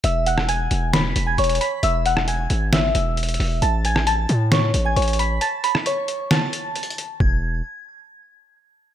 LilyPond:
<<
  \new Staff \with { instrumentName = "Synth bell" } { \time 4/4 \key e \major \tempo 4 = 134 <e'' e'''>8 <fis'' fis'''>8 <gis'' gis'''>4 <b'' b'''>8. <gis'' gis'''>16 <cis'' cis'''>8 <b'' b'''>8 | <e'' e'''>8 <fis'' fis'''>8 <gis'' gis'''>4 <e'' e'''>2 | <a'' a'''>8 <gis'' gis'''>8 <a'' a'''>4 <cis'' cis'''>8. <gis'' gis'''>16 <cis'' cis'''>8 <b'' b'''>8 | <a'' a'''>8 <b'' b'''>8 <cis'' cis'''>4 <a'' a'''>2 |
gis'''8 r2. r8 | }
  \new Staff \with { instrumentName = "808-style bass" } { \clef bass \time 4/4 \key e \major e,,4. e,,4 e,,8 e,,8 r8 | e,,4. gis,,4 e,,4 e,,8 | a,,4. a,4 a,,8 a,,4 | r1 |
e,,4 r2. | }
  \new DrumStaff \with { instrumentName = "Drums" } \drummode { \time 4/4 hh8 hh16 ss16 hh8 hh8 <hh sn>8 hh8 hh32 hh32 hh32 hh32 hh8 | hh8 hh16 ss16 hh8 hh8 <hh sn>8 hh8 hh32 hh32 hh32 hh32 hho8 | hh8 hh16 ss16 hh8 hh8 <hh sn>8 hh8 hh32 hh32 hh32 hh32 hh8 | hh8 hh16 ss16 hh8 hh8 <hh sn>8 hh8 \tuplet 3/2 { hh16 hh16 hh16 hh16 r16 r16 } |
bd4 r4 r4 r4 | }
>>